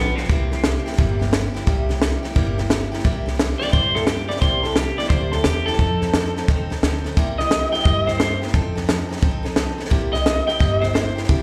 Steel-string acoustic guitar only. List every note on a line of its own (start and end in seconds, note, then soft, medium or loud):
0.00 0.17 F3 medium
0.00 0.18 B3 medium
0.00 0.17 F4 medium
0.00 0.17 G4 medium
0.18 0.30 F3 soft
0.18 0.31 B3 medium
0.18 0.30 F4 medium
0.18 0.30 G4 medium
0.30 0.52 C3 medium
0.30 0.52 G3 medium
0.30 0.53 A#3 medium
0.30 0.52 E4 medium
0.30 0.51 G4 medium
0.52 0.63 A#3 soft
0.52 0.64 E4 medium
0.52 0.64 G4 medium
0.63 0.86 G3 medium
0.63 0.87 A#3 medium
0.63 0.86 E4 medium
0.63 0.85 G4 medium
0.86 0.97 A#3 soft
0.86 0.97 E4 medium
0.86 0.98 G4 medium
0.97 1.20 C3 loud
0.97 1.21 G3 loud
0.97 1.20 A#3 medium
0.97 1.20 E4 loud
0.97 1.18 G4 medium
1.19 1.31 A#3 medium
1.19 1.32 E4 medium
1.19 1.32 G4 medium
1.31 1.54 G3 medium
1.31 1.55 A#3 medium
1.31 1.53 E4 medium
1.31 1.53 G4 medium
1.54 1.66 A#3 medium
1.54 1.66 E4 medium
1.54 1.67 G4 medium
1.67 1.89 C3 medium
1.67 1.89 G3 medium
1.67 1.90 A#3 medium
1.67 1.89 E4 medium
1.67 1.88 G4 medium
1.89 2.00 A#3 medium
1.89 2.00 E4 medium
1.89 2.01 G4 medium
2.00 2.23 G3 medium
2.00 2.24 A#3 medium
2.00 2.23 E4 medium
2.00 2.22 G4 medium
2.23 2.35 A#3 soft
2.23 2.35 E4 medium
2.23 2.35 G4 medium
2.35 2.58 C3 medium
2.35 2.58 G3 medium
2.35 2.58 A#3 medium
2.35 2.58 E4 medium
2.35 2.56 G4 loud
2.58 2.69 A#3 soft
2.58 2.70 E4 medium
2.58 2.70 G4 medium
2.69 2.92 G3 medium
2.69 2.93 A#3 medium
2.69 2.92 E4 medium
2.69 2.90 G4 medium
2.92 3.04 A#3 soft
2.92 3.04 E4 medium
2.92 3.04 G4 medium
3.04 3.27 C3 medium
3.04 3.27 G3 medium
3.04 3.27 A#3 medium
3.04 3.26 E4 medium
3.04 3.24 G4 loud
3.26 3.37 A#3 soft
3.26 3.38 E4 medium
3.26 3.38 G4 medium
3.38 3.60 G3 medium
3.38 3.61 A#3 medium
3.38 3.61 E4 medium
3.38 3.60 G4 medium
3.61 3.72 A#3 soft
3.61 3.73 E4 medium
3.61 3.73 G4 medium
3.73 3.95 C3 medium
3.73 3.95 G3 medium
3.73 3.96 A#3 medium
3.73 3.95 E4 medium
3.73 3.94 G4 loud
3.95 4.07 A#3 medium
3.95 4.08 E4 medium
3.95 4.07 G4 medium
4.07 4.30 G3 medium
4.07 4.30 A#3 medium
4.07 4.28 E4 medium
4.07 4.27 G4 medium
4.29 4.41 A#3 soft
4.29 4.42 E4 soft
4.29 4.41 G4 medium
4.42 4.64 C3 medium
4.42 4.65 G3 medium
4.42 4.64 A#3 medium
4.42 4.63 E4 medium
4.42 4.62 G4 medium
4.63 4.75 A#3 soft
4.63 4.76 E4 medium
4.63 4.76 G4 medium
4.76 4.98 G3 medium
4.76 4.98 A#3 medium
4.76 4.98 E4 medium
4.76 4.97 G4 medium
4.98 5.11 A#3 soft
4.98 5.11 E4 soft
4.98 5.10 G4 medium
5.11 5.33 C3 medium
5.11 5.33 G3 medium
5.11 5.33 A#3 medium
5.11 5.33 E4 medium
5.11 5.32 G4 medium
5.33 5.45 A#3 soft
5.33 5.45 E4 medium
5.33 5.45 G4 medium
5.44 5.67 G3 medium
5.44 5.68 A#3 medium
5.44 5.67 E4 medium
5.44 5.66 G4 medium
5.67 5.80 A#3 soft
5.67 5.80 E4 medium
5.67 5.79 G4 medium
5.79 6.02 F3 medium
5.79 6.02 C4 medium
5.79 6.02 D#4 medium
5.79 6.00 A4 medium
6.02 6.14 C4 medium
6.02 6.14 D#4 soft
6.02 6.14 A4 medium
6.14 6.36 F3 medium
6.14 6.37 C4 medium
6.14 6.37 D#4 medium
6.14 6.35 A4 medium
6.36 6.48 C4 medium
6.36 6.49 D#4 medium
6.36 6.48 A4 medium
6.49 6.71 F3 medium
6.49 6.71 C4 medium
6.49 6.70 D#4 medium
6.49 6.69 A4 medium
6.70 6.82 C4 medium
6.70 6.83 D#4 medium
6.70 6.82 A4 medium
6.82 7.04 F3 medium
6.82 7.05 C4 medium
6.82 7.05 D#4 medium
6.82 7.03 A4 medium
7.04 7.17 C4 medium
7.04 7.17 D#4 medium
7.04 7.16 A4 medium
7.17 7.39 C3 medium
7.17 7.39 G3 medium
7.17 7.40 A#3 medium
7.17 7.39 E4 medium
7.17 7.38 G4 loud
7.39 7.50 A#3 soft
7.39 7.50 E4 soft
7.39 7.51 G4 soft
7.50 7.73 G3 medium
7.50 7.73 A#3 medium
7.50 7.72 E4 medium
7.50 7.71 G4 medium
7.72 7.84 A#3 soft
7.72 7.84 E4 medium
7.72 7.85 G4 medium
7.84 8.07 C3 medium
7.84 8.07 G3 medium
7.84 8.08 A#3 medium
7.84 8.07 E4 medium
7.84 8.06 G4 medium
8.07 8.19 A#3 soft
8.07 8.20 E4 soft
8.07 8.19 G4 medium
8.19 8.42 G3 medium
8.19 8.42 A#3 medium
8.19 8.42 E4 medium
8.19 8.40 G4 medium
8.42 8.53 A#3 soft
8.42 8.54 E4 soft
8.42 8.54 G4 medium
8.53 8.76 F3 medium
8.53 8.76 C4 medium
8.53 8.76 D#4 medium
8.53 8.74 A4 medium
8.75 8.87 C4 soft
8.75 8.88 D#4 medium
8.75 8.88 A4 medium
8.88 9.10 F3 medium
8.88 9.10 C4 medium
8.88 9.09 D#4 medium
8.88 9.08 A4 medium
9.09 9.20 C4 medium
9.09 9.21 D#4 medium
9.09 9.22 A4 medium
9.21 9.44 F3 medium
9.21 9.44 C4 loud
9.21 9.43 D#4 medium
9.21 9.42 A4 medium
9.43 9.55 C4 medium
9.43 9.56 D#4 medium
9.43 9.56 A4 medium
9.56 9.79 F3 medium
9.56 9.79 C4 medium
9.56 9.78 D#4 medium
9.56 9.77 A4 medium
9.78 9.90 C4 medium
9.78 9.91 D#4 medium
9.78 9.91 A4 medium
9.89 10.13 C3 medium
9.89 10.13 G3 loud
9.89 10.13 A#3 medium
9.89 10.13 E4 loud
9.89 10.12 G4 loud
10.13 10.23 A#3 soft
10.13 10.24 E4 medium
10.13 10.25 G4 medium
10.24 10.47 G3 medium
10.24 10.48 A#3 medium
10.24 10.47 E4 medium
10.24 10.46 G4 medium
10.47 10.59 A#3 soft
10.47 10.59 E4 medium
10.47 10.60 G4 medium
10.59 10.82 C3 medium
10.59 10.82 G3 medium
10.59 10.82 A#3 medium
10.59 10.81 E4 medium
10.59 10.80 G4 medium
10.81 10.93 A#3 soft
10.81 10.93 E4 medium
10.81 10.94 G4 medium
10.93 11.16 G3 medium
10.93 11.17 A#3 medium
10.93 11.16 E4 medium
10.93 11.14 G4 medium
11.15 11.28 A#3 soft
11.15 11.28 E4 medium
11.15 11.28 G4 medium
11.28 11.43 C3 loud
11.28 11.43 G3 medium
11.28 11.43 A#3 medium
11.28 11.43 E4 medium
11.28 11.43 G4 loud